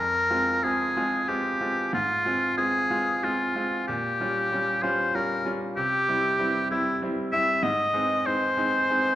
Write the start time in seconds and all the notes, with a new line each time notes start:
Already playing: F2 A#4
0.30 G#3 C4 F4
0.63 G#3 C4 F4 G#4
0.97 G#3 C4 F4
1.28 G#3 C4 F4 G4
1.61 G#3 C4 F4
1.93 G#2 F4
2.25 G#3 C4 F4
2.57 G#3 C4 F4 G#4
2.90 G#3 C4 F4
3.23 G#3 C4 F4
3.55 G#3 C4 F4
3.87 A#2 G4
4.20 G3 C#4 F4
4.52 G3 C#4 F4
4.82 G3 C#4 F4 C5
5.14 G3 C#4 F4 A#4
5.45 G3 C#4 F4
5.76 C3 G4
6.08 G3 C4 E4
6.39 G3 C4 E4
6.71 G3 C4 E4
7.02 G3 C4 E4
7.32 G3 C4 E4 E5
7.63 G#2 D#5
7.93 G#3 C4 D#4
8.26 G#3 C4 D#4 C5
8.57 G#3 C4 D#4
8.89 G#3 C4 D#4